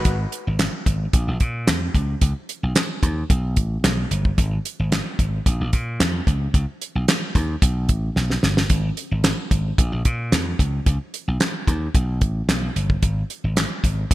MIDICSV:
0, 0, Header, 1, 4, 480
1, 0, Start_track
1, 0, Tempo, 540541
1, 48, Time_signature, 4, 2, 24, 8
1, 12557, End_track
2, 0, Start_track
2, 0, Title_t, "Analog polysynth"
2, 0, Program_c, 0, 90
2, 0, Note_on_c, 0, 66, 54
2, 0, Note_on_c, 0, 71, 71
2, 166, Note_off_c, 0, 71, 0
2, 169, Note_off_c, 0, 66, 0
2, 12557, End_track
3, 0, Start_track
3, 0, Title_t, "Slap bass"
3, 0, Program_c, 1, 36
3, 47, Note_on_c, 1, 32, 98
3, 221, Note_off_c, 1, 32, 0
3, 419, Note_on_c, 1, 32, 90
3, 591, Note_off_c, 1, 32, 0
3, 766, Note_on_c, 1, 32, 92
3, 940, Note_off_c, 1, 32, 0
3, 1007, Note_on_c, 1, 34, 95
3, 1099, Note_off_c, 1, 34, 0
3, 1135, Note_on_c, 1, 34, 87
3, 1217, Note_off_c, 1, 34, 0
3, 1249, Note_on_c, 1, 46, 86
3, 1490, Note_on_c, 1, 41, 84
3, 1503, Note_off_c, 1, 46, 0
3, 1663, Note_off_c, 1, 41, 0
3, 1728, Note_on_c, 1, 37, 90
3, 1902, Note_off_c, 1, 37, 0
3, 1969, Note_on_c, 1, 37, 95
3, 2061, Note_off_c, 1, 37, 0
3, 2337, Note_on_c, 1, 35, 80
3, 2418, Note_off_c, 1, 35, 0
3, 2689, Note_on_c, 1, 39, 84
3, 2862, Note_off_c, 1, 39, 0
3, 2930, Note_on_c, 1, 35, 95
3, 3170, Note_off_c, 1, 35, 0
3, 3170, Note_on_c, 1, 33, 82
3, 3343, Note_off_c, 1, 33, 0
3, 3410, Note_on_c, 1, 35, 82
3, 3583, Note_off_c, 1, 35, 0
3, 3648, Note_on_c, 1, 31, 82
3, 3822, Note_off_c, 1, 31, 0
3, 3890, Note_on_c, 1, 32, 107
3, 4063, Note_off_c, 1, 32, 0
3, 4258, Note_on_c, 1, 32, 94
3, 4431, Note_off_c, 1, 32, 0
3, 4608, Note_on_c, 1, 32, 89
3, 4782, Note_off_c, 1, 32, 0
3, 4850, Note_on_c, 1, 34, 96
3, 4942, Note_off_c, 1, 34, 0
3, 4978, Note_on_c, 1, 34, 86
3, 5059, Note_off_c, 1, 34, 0
3, 5091, Note_on_c, 1, 46, 84
3, 5327, Note_on_c, 1, 41, 89
3, 5340, Note_off_c, 1, 46, 0
3, 5501, Note_off_c, 1, 41, 0
3, 5568, Note_on_c, 1, 37, 89
3, 5742, Note_off_c, 1, 37, 0
3, 5808, Note_on_c, 1, 37, 94
3, 5900, Note_off_c, 1, 37, 0
3, 6175, Note_on_c, 1, 35, 83
3, 6257, Note_off_c, 1, 35, 0
3, 6527, Note_on_c, 1, 39, 83
3, 6701, Note_off_c, 1, 39, 0
3, 6768, Note_on_c, 1, 35, 92
3, 7008, Note_off_c, 1, 35, 0
3, 7008, Note_on_c, 1, 33, 76
3, 7182, Note_off_c, 1, 33, 0
3, 7249, Note_on_c, 1, 35, 83
3, 7423, Note_off_c, 1, 35, 0
3, 7486, Note_on_c, 1, 31, 78
3, 7661, Note_off_c, 1, 31, 0
3, 7726, Note_on_c, 1, 32, 99
3, 7901, Note_off_c, 1, 32, 0
3, 8093, Note_on_c, 1, 32, 92
3, 8268, Note_off_c, 1, 32, 0
3, 8446, Note_on_c, 1, 32, 88
3, 8621, Note_off_c, 1, 32, 0
3, 8686, Note_on_c, 1, 34, 98
3, 8779, Note_off_c, 1, 34, 0
3, 8811, Note_on_c, 1, 34, 91
3, 8894, Note_off_c, 1, 34, 0
3, 8927, Note_on_c, 1, 46, 85
3, 9166, Note_on_c, 1, 41, 90
3, 9180, Note_off_c, 1, 46, 0
3, 9341, Note_off_c, 1, 41, 0
3, 9406, Note_on_c, 1, 37, 89
3, 9581, Note_off_c, 1, 37, 0
3, 9647, Note_on_c, 1, 37, 99
3, 9740, Note_off_c, 1, 37, 0
3, 10015, Note_on_c, 1, 35, 83
3, 10097, Note_off_c, 1, 35, 0
3, 10367, Note_on_c, 1, 39, 85
3, 10541, Note_off_c, 1, 39, 0
3, 10607, Note_on_c, 1, 35, 91
3, 10848, Note_off_c, 1, 35, 0
3, 10848, Note_on_c, 1, 33, 84
3, 11022, Note_off_c, 1, 33, 0
3, 11086, Note_on_c, 1, 35, 83
3, 11261, Note_off_c, 1, 35, 0
3, 11330, Note_on_c, 1, 31, 81
3, 11503, Note_off_c, 1, 31, 0
3, 11568, Note_on_c, 1, 32, 93
3, 11742, Note_off_c, 1, 32, 0
3, 11934, Note_on_c, 1, 32, 85
3, 12108, Note_off_c, 1, 32, 0
3, 12287, Note_on_c, 1, 32, 87
3, 12461, Note_off_c, 1, 32, 0
3, 12528, Note_on_c, 1, 34, 97
3, 12557, Note_off_c, 1, 34, 0
3, 12557, End_track
4, 0, Start_track
4, 0, Title_t, "Drums"
4, 43, Note_on_c, 9, 42, 88
4, 47, Note_on_c, 9, 36, 97
4, 132, Note_off_c, 9, 42, 0
4, 135, Note_off_c, 9, 36, 0
4, 286, Note_on_c, 9, 42, 64
4, 375, Note_off_c, 9, 42, 0
4, 524, Note_on_c, 9, 42, 81
4, 527, Note_on_c, 9, 38, 102
4, 535, Note_on_c, 9, 39, 86
4, 613, Note_off_c, 9, 42, 0
4, 616, Note_off_c, 9, 38, 0
4, 624, Note_off_c, 9, 39, 0
4, 766, Note_on_c, 9, 36, 89
4, 767, Note_on_c, 9, 42, 68
4, 855, Note_off_c, 9, 36, 0
4, 856, Note_off_c, 9, 42, 0
4, 1007, Note_on_c, 9, 42, 98
4, 1008, Note_on_c, 9, 36, 107
4, 1096, Note_off_c, 9, 36, 0
4, 1096, Note_off_c, 9, 42, 0
4, 1244, Note_on_c, 9, 42, 65
4, 1249, Note_on_c, 9, 36, 86
4, 1333, Note_off_c, 9, 42, 0
4, 1338, Note_off_c, 9, 36, 0
4, 1487, Note_on_c, 9, 38, 105
4, 1489, Note_on_c, 9, 42, 90
4, 1495, Note_on_c, 9, 39, 88
4, 1576, Note_off_c, 9, 38, 0
4, 1578, Note_off_c, 9, 42, 0
4, 1584, Note_off_c, 9, 39, 0
4, 1727, Note_on_c, 9, 36, 83
4, 1731, Note_on_c, 9, 42, 71
4, 1816, Note_off_c, 9, 36, 0
4, 1820, Note_off_c, 9, 42, 0
4, 1967, Note_on_c, 9, 42, 90
4, 1969, Note_on_c, 9, 36, 105
4, 2055, Note_off_c, 9, 42, 0
4, 2057, Note_off_c, 9, 36, 0
4, 2212, Note_on_c, 9, 42, 63
4, 2300, Note_off_c, 9, 42, 0
4, 2446, Note_on_c, 9, 42, 87
4, 2448, Note_on_c, 9, 38, 98
4, 2457, Note_on_c, 9, 39, 84
4, 2535, Note_off_c, 9, 42, 0
4, 2537, Note_off_c, 9, 38, 0
4, 2546, Note_off_c, 9, 39, 0
4, 2688, Note_on_c, 9, 36, 83
4, 2691, Note_on_c, 9, 42, 64
4, 2777, Note_off_c, 9, 36, 0
4, 2779, Note_off_c, 9, 42, 0
4, 2930, Note_on_c, 9, 36, 108
4, 2932, Note_on_c, 9, 42, 96
4, 3019, Note_off_c, 9, 36, 0
4, 3020, Note_off_c, 9, 42, 0
4, 3166, Note_on_c, 9, 42, 65
4, 3170, Note_on_c, 9, 36, 86
4, 3254, Note_off_c, 9, 42, 0
4, 3259, Note_off_c, 9, 36, 0
4, 3409, Note_on_c, 9, 38, 106
4, 3411, Note_on_c, 9, 42, 83
4, 3418, Note_on_c, 9, 39, 87
4, 3498, Note_off_c, 9, 38, 0
4, 3500, Note_off_c, 9, 42, 0
4, 3506, Note_off_c, 9, 39, 0
4, 3651, Note_on_c, 9, 42, 72
4, 3740, Note_off_c, 9, 42, 0
4, 3774, Note_on_c, 9, 36, 84
4, 3863, Note_off_c, 9, 36, 0
4, 3889, Note_on_c, 9, 42, 83
4, 3890, Note_on_c, 9, 36, 98
4, 3978, Note_off_c, 9, 42, 0
4, 3979, Note_off_c, 9, 36, 0
4, 4132, Note_on_c, 9, 42, 64
4, 4221, Note_off_c, 9, 42, 0
4, 4369, Note_on_c, 9, 42, 84
4, 4371, Note_on_c, 9, 38, 101
4, 4380, Note_on_c, 9, 39, 81
4, 4457, Note_off_c, 9, 42, 0
4, 4460, Note_off_c, 9, 38, 0
4, 4468, Note_off_c, 9, 39, 0
4, 4608, Note_on_c, 9, 36, 86
4, 4610, Note_on_c, 9, 42, 65
4, 4697, Note_off_c, 9, 36, 0
4, 4699, Note_off_c, 9, 42, 0
4, 4850, Note_on_c, 9, 36, 100
4, 4852, Note_on_c, 9, 42, 92
4, 4938, Note_off_c, 9, 36, 0
4, 4941, Note_off_c, 9, 42, 0
4, 5087, Note_on_c, 9, 42, 69
4, 5090, Note_on_c, 9, 36, 88
4, 5176, Note_off_c, 9, 42, 0
4, 5179, Note_off_c, 9, 36, 0
4, 5330, Note_on_c, 9, 38, 113
4, 5332, Note_on_c, 9, 42, 83
4, 5338, Note_on_c, 9, 39, 87
4, 5419, Note_off_c, 9, 38, 0
4, 5421, Note_off_c, 9, 42, 0
4, 5427, Note_off_c, 9, 39, 0
4, 5568, Note_on_c, 9, 36, 87
4, 5574, Note_on_c, 9, 42, 75
4, 5657, Note_off_c, 9, 36, 0
4, 5662, Note_off_c, 9, 42, 0
4, 5809, Note_on_c, 9, 36, 100
4, 5809, Note_on_c, 9, 42, 81
4, 5897, Note_off_c, 9, 36, 0
4, 5898, Note_off_c, 9, 42, 0
4, 6052, Note_on_c, 9, 42, 68
4, 6141, Note_off_c, 9, 42, 0
4, 6288, Note_on_c, 9, 42, 87
4, 6291, Note_on_c, 9, 38, 104
4, 6299, Note_on_c, 9, 39, 82
4, 6377, Note_off_c, 9, 42, 0
4, 6380, Note_off_c, 9, 38, 0
4, 6388, Note_off_c, 9, 39, 0
4, 6528, Note_on_c, 9, 36, 82
4, 6530, Note_on_c, 9, 42, 73
4, 6617, Note_off_c, 9, 36, 0
4, 6619, Note_off_c, 9, 42, 0
4, 6768, Note_on_c, 9, 36, 110
4, 6768, Note_on_c, 9, 42, 98
4, 6857, Note_off_c, 9, 36, 0
4, 6857, Note_off_c, 9, 42, 0
4, 7004, Note_on_c, 9, 42, 62
4, 7008, Note_on_c, 9, 36, 86
4, 7092, Note_off_c, 9, 42, 0
4, 7097, Note_off_c, 9, 36, 0
4, 7247, Note_on_c, 9, 38, 54
4, 7335, Note_off_c, 9, 38, 0
4, 7374, Note_on_c, 9, 38, 54
4, 7463, Note_off_c, 9, 38, 0
4, 7485, Note_on_c, 9, 38, 79
4, 7574, Note_off_c, 9, 38, 0
4, 7612, Note_on_c, 9, 38, 81
4, 7700, Note_off_c, 9, 38, 0
4, 7722, Note_on_c, 9, 42, 85
4, 7726, Note_on_c, 9, 36, 97
4, 7811, Note_off_c, 9, 42, 0
4, 7815, Note_off_c, 9, 36, 0
4, 7966, Note_on_c, 9, 42, 62
4, 8055, Note_off_c, 9, 42, 0
4, 8203, Note_on_c, 9, 42, 82
4, 8205, Note_on_c, 9, 38, 102
4, 8214, Note_on_c, 9, 39, 81
4, 8292, Note_off_c, 9, 42, 0
4, 8294, Note_off_c, 9, 38, 0
4, 8303, Note_off_c, 9, 39, 0
4, 8446, Note_on_c, 9, 36, 84
4, 8447, Note_on_c, 9, 42, 68
4, 8535, Note_off_c, 9, 36, 0
4, 8536, Note_off_c, 9, 42, 0
4, 8687, Note_on_c, 9, 36, 104
4, 8689, Note_on_c, 9, 42, 101
4, 8776, Note_off_c, 9, 36, 0
4, 8778, Note_off_c, 9, 42, 0
4, 8925, Note_on_c, 9, 42, 65
4, 8928, Note_on_c, 9, 36, 87
4, 9014, Note_off_c, 9, 42, 0
4, 9017, Note_off_c, 9, 36, 0
4, 9166, Note_on_c, 9, 38, 106
4, 9169, Note_on_c, 9, 42, 85
4, 9175, Note_on_c, 9, 39, 85
4, 9255, Note_off_c, 9, 38, 0
4, 9257, Note_off_c, 9, 42, 0
4, 9264, Note_off_c, 9, 39, 0
4, 9407, Note_on_c, 9, 36, 85
4, 9412, Note_on_c, 9, 42, 76
4, 9495, Note_off_c, 9, 36, 0
4, 9501, Note_off_c, 9, 42, 0
4, 9647, Note_on_c, 9, 42, 84
4, 9648, Note_on_c, 9, 36, 100
4, 9736, Note_off_c, 9, 42, 0
4, 9737, Note_off_c, 9, 36, 0
4, 9891, Note_on_c, 9, 42, 64
4, 9980, Note_off_c, 9, 42, 0
4, 10126, Note_on_c, 9, 42, 81
4, 10128, Note_on_c, 9, 38, 101
4, 10137, Note_on_c, 9, 39, 78
4, 10215, Note_off_c, 9, 42, 0
4, 10217, Note_off_c, 9, 38, 0
4, 10226, Note_off_c, 9, 39, 0
4, 10367, Note_on_c, 9, 36, 89
4, 10370, Note_on_c, 9, 42, 70
4, 10456, Note_off_c, 9, 36, 0
4, 10459, Note_off_c, 9, 42, 0
4, 10608, Note_on_c, 9, 36, 105
4, 10609, Note_on_c, 9, 42, 95
4, 10696, Note_off_c, 9, 36, 0
4, 10698, Note_off_c, 9, 42, 0
4, 10845, Note_on_c, 9, 42, 63
4, 10848, Note_on_c, 9, 36, 90
4, 10934, Note_off_c, 9, 42, 0
4, 10937, Note_off_c, 9, 36, 0
4, 11089, Note_on_c, 9, 38, 108
4, 11091, Note_on_c, 9, 42, 88
4, 11097, Note_on_c, 9, 39, 90
4, 11177, Note_off_c, 9, 38, 0
4, 11179, Note_off_c, 9, 42, 0
4, 11186, Note_off_c, 9, 39, 0
4, 11333, Note_on_c, 9, 42, 75
4, 11421, Note_off_c, 9, 42, 0
4, 11454, Note_on_c, 9, 36, 84
4, 11542, Note_off_c, 9, 36, 0
4, 11567, Note_on_c, 9, 42, 87
4, 11568, Note_on_c, 9, 36, 103
4, 11655, Note_off_c, 9, 42, 0
4, 11657, Note_off_c, 9, 36, 0
4, 11811, Note_on_c, 9, 42, 65
4, 11900, Note_off_c, 9, 42, 0
4, 12046, Note_on_c, 9, 42, 81
4, 12049, Note_on_c, 9, 38, 102
4, 12057, Note_on_c, 9, 39, 86
4, 12135, Note_off_c, 9, 42, 0
4, 12138, Note_off_c, 9, 38, 0
4, 12146, Note_off_c, 9, 39, 0
4, 12288, Note_on_c, 9, 36, 88
4, 12291, Note_on_c, 9, 42, 68
4, 12376, Note_off_c, 9, 36, 0
4, 12380, Note_off_c, 9, 42, 0
4, 12529, Note_on_c, 9, 36, 106
4, 12557, Note_off_c, 9, 36, 0
4, 12557, End_track
0, 0, End_of_file